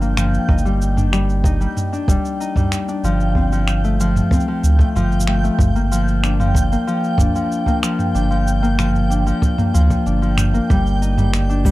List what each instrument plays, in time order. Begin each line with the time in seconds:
Already playing: sub bass G1, harp F3 D4, synth texture G5
0.01 harp A#3, shaker
0.17 harp F3, finger snap, mid tom, shaker
0.34 shaker
0.49 sub bass G1, harp D#4, kick
0.58 shaker
0.65 harp G3, shaker
0.82 shaker
0.97 harp D4, mid tom, shaker
1.12 harp G3, finger snap, shaker
1.30 shaker
1.44 harp D#4, kick, shaker
1.61 harp G3, shaker
1.77 mid tom, shaker
1.93 harp D4, shaker
2.08 sub bass F1, harp G3, kick, shaker
2.25 shaker
2.40 harp D#4, shaker
2.56 harp G3, kick, mid tom, shaker
2.72 finger snap, shaker
2.88 harp D4, shaker
3.03 sub bass G1, harp F3, shaker
3.20 shaker
3.35 harp C4, kick
3.52 harp F3, shaker
3.68 finger snap, shaker
3.84 harp A3, shaker
4.00 harp F3, shaker
4.16 mid tom, shaker
4.31 harp C4, kick, shaker
4.40 shaker
4.48 harp F3
4.63 sub bass D2, shaker
4.79 harp A3, kick, shaker
4.95 sub bass G1, harp F3, mid tom, shaker
5.12 shaker
5.20 shaker
5.27 harp A3, finger snap
5.44 harp A3, shaker
5.59 sub bass G1, kick, mid tom, shaker
5.76 harp A#3, shaker
5.92 harp F3, shaker
6.08 shaker
6.23 harp D4, finger snap, shaker
6.40 harp F3, mid tom, shaker
6.55 kick, shaker
6.72 harp A#3, shaker
6.87 harp F3, shaker
7.04 shaker
7.18 sub bass F1, harp D4, kick, mid tom, shaker
7.35 harp F3, shaker
7.52 shaker
7.66 harp A#3, kick, shaker
7.83 harp F3, finger snap, shaker
7.99 mid tom, shaker
8.15 sub bass G1, harp D4, shaker
8.31 harp F3, shaker
8.47 shaker
8.63 harp A#3, shaker
8.79 harp F3, finger snap, mid tom, shaker
8.96 shaker
9.10 harp D4, shaker
9.26 harp F3, shaker
9.42 kick, shaker
9.58 harp A#3, mid tom, shaker
9.74 sub bass D2, harp F3, shaker
9.90 kick, shaker
10.06 sub bass G1, harp D4, shaker
10.22 harp F3, shaker
10.38 finger snap, mid tom, shaker
10.54 harp A#3, shaker
10.70 sub bass G1, harp G3, kick, shaker
10.87 shaker
11.02 harp D#4, shaker
11.18 harp G3, mid tom, shaker
11.34 finger snap, shaker
11.49 harp D4, shaker
11.65 harp G3, kick, shaker